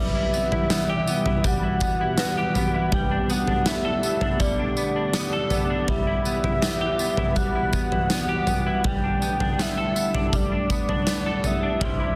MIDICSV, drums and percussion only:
0, 0, Header, 1, 2, 480
1, 0, Start_track
1, 0, Key_signature, 1, "major"
1, 0, Tempo, 740741
1, 1894, Time_signature, 4, 2, 24, 8
1, 7876, End_track
2, 0, Start_track
2, 0, Title_t, "Drums"
2, 218, Note_on_c, 9, 54, 62
2, 283, Note_off_c, 9, 54, 0
2, 337, Note_on_c, 9, 43, 65
2, 402, Note_off_c, 9, 43, 0
2, 454, Note_on_c, 9, 38, 117
2, 455, Note_on_c, 9, 54, 90
2, 519, Note_off_c, 9, 38, 0
2, 519, Note_off_c, 9, 54, 0
2, 696, Note_on_c, 9, 54, 69
2, 761, Note_off_c, 9, 54, 0
2, 814, Note_on_c, 9, 43, 72
2, 879, Note_off_c, 9, 43, 0
2, 934, Note_on_c, 9, 43, 68
2, 934, Note_on_c, 9, 54, 64
2, 935, Note_on_c, 9, 36, 88
2, 999, Note_off_c, 9, 43, 0
2, 999, Note_off_c, 9, 54, 0
2, 1000, Note_off_c, 9, 36, 0
2, 1169, Note_on_c, 9, 54, 64
2, 1174, Note_on_c, 9, 36, 94
2, 1234, Note_off_c, 9, 54, 0
2, 1239, Note_off_c, 9, 36, 0
2, 1410, Note_on_c, 9, 38, 119
2, 1411, Note_on_c, 9, 54, 106
2, 1475, Note_off_c, 9, 38, 0
2, 1475, Note_off_c, 9, 54, 0
2, 1654, Note_on_c, 9, 43, 66
2, 1654, Note_on_c, 9, 54, 65
2, 1719, Note_off_c, 9, 43, 0
2, 1719, Note_off_c, 9, 54, 0
2, 1893, Note_on_c, 9, 43, 114
2, 1895, Note_on_c, 9, 36, 109
2, 1958, Note_off_c, 9, 43, 0
2, 1959, Note_off_c, 9, 36, 0
2, 2135, Note_on_c, 9, 54, 65
2, 2200, Note_off_c, 9, 54, 0
2, 2252, Note_on_c, 9, 43, 64
2, 2316, Note_off_c, 9, 43, 0
2, 2370, Note_on_c, 9, 38, 119
2, 2370, Note_on_c, 9, 54, 97
2, 2435, Note_off_c, 9, 38, 0
2, 2435, Note_off_c, 9, 54, 0
2, 2613, Note_on_c, 9, 54, 67
2, 2678, Note_off_c, 9, 54, 0
2, 2729, Note_on_c, 9, 43, 69
2, 2794, Note_off_c, 9, 43, 0
2, 2850, Note_on_c, 9, 43, 68
2, 2850, Note_on_c, 9, 54, 62
2, 2852, Note_on_c, 9, 36, 82
2, 2914, Note_off_c, 9, 43, 0
2, 2914, Note_off_c, 9, 54, 0
2, 2917, Note_off_c, 9, 36, 0
2, 3089, Note_on_c, 9, 54, 63
2, 3154, Note_off_c, 9, 54, 0
2, 3327, Note_on_c, 9, 38, 113
2, 3328, Note_on_c, 9, 54, 99
2, 3392, Note_off_c, 9, 38, 0
2, 3393, Note_off_c, 9, 54, 0
2, 3566, Note_on_c, 9, 43, 64
2, 3566, Note_on_c, 9, 54, 62
2, 3631, Note_off_c, 9, 43, 0
2, 3631, Note_off_c, 9, 54, 0
2, 3811, Note_on_c, 9, 43, 127
2, 3812, Note_on_c, 9, 36, 103
2, 3875, Note_off_c, 9, 43, 0
2, 3877, Note_off_c, 9, 36, 0
2, 4052, Note_on_c, 9, 54, 63
2, 4117, Note_off_c, 9, 54, 0
2, 4172, Note_on_c, 9, 43, 68
2, 4237, Note_off_c, 9, 43, 0
2, 4292, Note_on_c, 9, 38, 114
2, 4293, Note_on_c, 9, 54, 90
2, 4357, Note_off_c, 9, 38, 0
2, 4357, Note_off_c, 9, 54, 0
2, 4530, Note_on_c, 9, 54, 71
2, 4595, Note_off_c, 9, 54, 0
2, 4649, Note_on_c, 9, 43, 73
2, 4713, Note_off_c, 9, 43, 0
2, 4769, Note_on_c, 9, 43, 64
2, 4769, Note_on_c, 9, 54, 70
2, 4771, Note_on_c, 9, 36, 84
2, 4834, Note_off_c, 9, 43, 0
2, 4834, Note_off_c, 9, 54, 0
2, 4836, Note_off_c, 9, 36, 0
2, 5007, Note_on_c, 9, 54, 62
2, 5011, Note_on_c, 9, 36, 91
2, 5072, Note_off_c, 9, 54, 0
2, 5076, Note_off_c, 9, 36, 0
2, 5132, Note_on_c, 9, 43, 64
2, 5197, Note_off_c, 9, 43, 0
2, 5248, Note_on_c, 9, 38, 120
2, 5249, Note_on_c, 9, 54, 106
2, 5313, Note_off_c, 9, 38, 0
2, 5314, Note_off_c, 9, 54, 0
2, 5488, Note_on_c, 9, 43, 64
2, 5488, Note_on_c, 9, 54, 65
2, 5553, Note_off_c, 9, 43, 0
2, 5553, Note_off_c, 9, 54, 0
2, 5730, Note_on_c, 9, 43, 124
2, 5732, Note_on_c, 9, 36, 116
2, 5795, Note_off_c, 9, 43, 0
2, 5797, Note_off_c, 9, 36, 0
2, 5974, Note_on_c, 9, 54, 64
2, 6039, Note_off_c, 9, 54, 0
2, 6093, Note_on_c, 9, 43, 69
2, 6158, Note_off_c, 9, 43, 0
2, 6217, Note_on_c, 9, 38, 111
2, 6217, Note_on_c, 9, 54, 90
2, 6282, Note_off_c, 9, 38, 0
2, 6282, Note_off_c, 9, 54, 0
2, 6455, Note_on_c, 9, 54, 67
2, 6519, Note_off_c, 9, 54, 0
2, 6574, Note_on_c, 9, 43, 72
2, 6639, Note_off_c, 9, 43, 0
2, 6693, Note_on_c, 9, 36, 91
2, 6693, Note_on_c, 9, 43, 65
2, 6693, Note_on_c, 9, 54, 67
2, 6758, Note_off_c, 9, 36, 0
2, 6758, Note_off_c, 9, 43, 0
2, 6758, Note_off_c, 9, 54, 0
2, 6933, Note_on_c, 9, 36, 92
2, 6933, Note_on_c, 9, 54, 61
2, 6998, Note_off_c, 9, 36, 0
2, 6998, Note_off_c, 9, 54, 0
2, 7055, Note_on_c, 9, 43, 63
2, 7120, Note_off_c, 9, 43, 0
2, 7172, Note_on_c, 9, 38, 127
2, 7173, Note_on_c, 9, 54, 96
2, 7236, Note_off_c, 9, 38, 0
2, 7237, Note_off_c, 9, 54, 0
2, 7412, Note_on_c, 9, 43, 59
2, 7412, Note_on_c, 9, 54, 59
2, 7477, Note_off_c, 9, 43, 0
2, 7477, Note_off_c, 9, 54, 0
2, 7654, Note_on_c, 9, 36, 113
2, 7655, Note_on_c, 9, 43, 127
2, 7718, Note_off_c, 9, 36, 0
2, 7720, Note_off_c, 9, 43, 0
2, 7876, End_track
0, 0, End_of_file